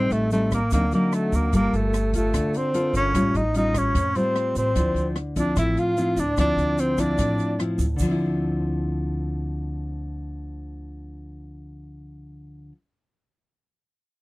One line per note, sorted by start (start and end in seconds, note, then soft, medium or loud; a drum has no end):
0.00 0.70 A2 medium
0.00 0.28 G3 medium
0.00 0.14 C4 loud
0.00 0.28 C4 medium
0.00 0.28 D#4 medium
0.00 0.13 C5 medium
0.10 0.67 A1 medium
0.10 0.32 A3 medium
0.10 0.30 A4 medium
0.10 closed hi-hat soft
0.10 shaker soft
0.31 0.59 G3 medium
0.31 0.51 A3 medium
0.31 0.59 C4 medium
0.31 0.59 D#4 medium
0.31 0.50 A4 medium
0.31 closed hi-hat soft
0.31 shaker medium
0.51 0.72 A#3 medium
0.51 0.71 A#4 medium
0.51 kick medium
0.51 cross-stick medium
0.51 closed hi-hat soft
0.51 shaker medium
0.71 0.91 D2 medium
0.71 1.51 D3 medium
0.71 0.84 F#3 medium
0.71 0.91 A#3 medium
0.71 0.84 C4 medium
0.71 0.84 D#4 medium
0.71 0.91 A#4 medium
0.71 kick medium
0.71 closed hi-hat medium
0.71 shaker medium
0.91 1.50 F#3 medium
0.91 1.16 A#3 medium
0.91 1.50 C4 medium
0.91 1.50 D#4 medium
0.91 1.14 A#4 medium
0.91 closed hi-hat soft
0.91 shaker soft
1.12 1.37 A3 medium
1.12 1.34 A4 medium
1.12 cross-stick medium
1.12 closed hi-hat soft
1.12 shaker soft
1.32 1.51 D2 medium
1.32 1.54 A#3 medium
1.32 1.52 A#4 medium
1.32 closed hi-hat soft
1.32 shaker medium
1.53 1.72 G1 medium
1.53 2.32 G3 medium
1.53 1.93 A#3 medium
1.53 1.77 A#3 loud
1.53 1.93 F4 medium
1.53 1.94 A4 medium
1.53 1.75 A#4 medium
1.53 kick medium
1.53 closed hi-hat medium
1.53 shaker medium
1.73 2.30 G1 medium
1.73 2.15 A3 medium
1.73 2.13 A4 medium
1.73 closed hi-hat soft
1.73 shaker soft
1.94 cross-stick medium
1.94 closed hi-hat soft
1.94 shaker medium
2.13 2.58 A3 medium
2.13 2.71 F4 medium
2.13 2.57 A4 medium
2.13 2.71 A4 medium
2.13 kick medium
2.13 closed hi-hat soft
2.13 shaker medium
2.34 2.52 D2 medium
2.34 3.12 D3 medium
2.34 kick medium
2.34 cross-stick medium
2.34 closed hi-hat medium
2.34 shaker medium
2.54 2.96 C4 loud
2.54 2.95 C5 medium
2.54 closed hi-hat soft
2.54 shaker soft
2.74 3.11 A#3 medium
2.74 3.11 F4 medium
2.74 3.11 A4 medium
2.74 closed hi-hat medium
2.74 shaker soft
2.93 3.12 G1 medium
2.93 3.38 C#4 medium
2.93 3.37 C#5 medium
2.93 closed hi-hat soft
2.93 shaker medium
3.14 3.33 A1 medium
3.14 3.93 A2 medium
3.14 3.40 G3 medium
3.14 3.41 C#4 medium
3.14 3.41 F4 medium
3.14 kick medium
3.14 cross-stick medium
3.14 closed hi-hat medium
3.14 shaker medium
3.34 3.91 A1 medium
3.34 3.56 D#4 medium
3.34 3.55 D#5 medium
3.34 closed hi-hat soft
3.34 shaker soft
3.54 3.95 G3 medium
3.54 3.95 C#4 medium
3.54 3.80 D#4 medium
3.54 3.95 F4 medium
3.54 3.78 D#5 medium
3.54 closed hi-hat soft
3.54 shaker medium
3.74 4.17 C#5 medium
3.74 kick medium
3.74 cross-stick medium
3.74 closed hi-hat soft
3.74 shaker medium
3.79 4.18 C#4 medium
3.95 4.14 F2 loud
3.95 4.74 A2 medium
3.95 kick medium
3.95 closed hi-hat medium
3.95 shaker medium
4.15 4.73 G3 medium
4.15 4.56 C4 medium
4.15 4.73 F4 medium
4.15 4.54 C5 medium
4.15 closed hi-hat soft
4.15 shaker soft
4.36 cross-stick medium
4.36 closed hi-hat soft
4.55 4.74 A1 medium
4.55 5.14 C4 medium
4.55 5.12 C5 medium
4.55 closed hi-hat soft
4.55 shaker medium
4.75 4.94 D2 medium
4.75 5.54 D3 medium
4.75 5.16 F3 medium
4.75 5.16 C4 medium
4.75 5.16 E4 medium
4.75 kick medium
4.75 closed hi-hat medium
4.75 shaker medium
4.94 5.52 D2 medium
4.94 closed hi-hat soft
4.94 shaker soft
5.16 cross-stick medium
5.16 closed hi-hat soft
5.36 5.94 F3 medium
5.36 5.94 C4 medium
5.36 5.57 D4 medium
5.36 5.94 E4 medium
5.36 5.55 D5 medium
5.36 kick medium
5.36 closed hi-hat soft
5.36 shaker medium
5.56 5.75 A1 loud
5.56 6.36 A2 medium
5.56 5.81 E4 medium
5.56 5.80 E5 medium
5.56 kick medium
5.56 cross-stick medium
5.56 closed hi-hat medium
5.56 shaker medium
5.77 6.21 F4 medium
5.77 6.19 F5 medium
5.77 closed hi-hat soft
5.77 shaker soft
5.97 6.23 F3 medium
5.97 6.23 C4 medium
5.97 6.24 E4 medium
5.97 closed hi-hat soft
5.97 shaker medium
6.16 6.36 D2 medium
6.16 6.39 D4 medium
6.16 6.36 D5 medium
6.16 closed hi-hat soft
6.16 shaker medium
6.37 6.56 D2 medium
6.37 7.17 D3 medium
6.37 6.95 F3 medium
6.37 6.95 C4 medium
6.37 6.82 D4 loud
6.37 6.95 E4 medium
6.37 6.81 D5 medium
6.37 kick medium
6.37 cross-stick medium
6.37 closed hi-hat medium
6.37 shaker medium
6.57 7.14 D2 medium
6.57 closed hi-hat soft
6.57 shaker soft
6.78 7.02 C4 medium
6.78 7.00 C5 medium
6.78 closed hi-hat medium
6.78 shaker medium
6.98 7.56 F3 medium
6.98 7.56 C4 medium
6.98 7.60 D4 medium
6.98 7.56 E4 medium
6.98 7.59 D5 medium
6.98 kick medium
6.98 cross-stick medium
6.98 closed hi-hat soft
6.98 shaker medium
7.18 7.37 A1 medium
7.18 7.97 A2 medium
7.18 kick medium
7.18 closed hi-hat medium
7.18 shaker medium
7.38 closed hi-hat soft
7.38 shaker soft
7.59 7.85 F3 medium
7.59 7.85 C4 medium
7.59 7.86 E4 medium
7.59 cross-stick medium
7.59 closed hi-hat soft
7.78 7.98 D2 medium
7.78 closed hi-hat soft
7.78 shaker medium
7.96 12.70 D2 medium
7.96 12.72 D3 medium
7.96 kick medium
7.96 shaker loud
8.00 12.75 F3 medium
8.00 crash medium
8.07 12.77 C4 medium
8.11 12.79 E4 medium